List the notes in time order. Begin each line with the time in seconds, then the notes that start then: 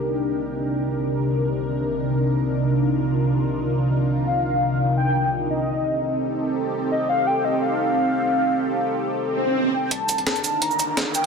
Already playing: C3 D4 D#4 G4 A#4
2.15 F4
4.27 F5
4.97 G5
5.50 D#5
5.68 C4 G4 A4
6.91 D#5
7.09 F5
7.27 G5
7.44 D#5
7.62 F5
9.21 swell
9.74 G5
9.91 C2 D4 D#4 A#4 A5, closed hi-hat, riser
10.09 closed hi-hat, cabasa
10.18 closed hi-hat
10.26 D#2, snare, closed hi-hat
10.36 closed hi-hat, cabasa
10.44 G1, closed hi-hat, cabasa
10.62 A#5, closed hi-hat
10.71 cabasa
10.79 closed hi-hat, cabasa
10.97 C2, snare, closed hi-hat
11.15 G5, closed hi-hat, cabasa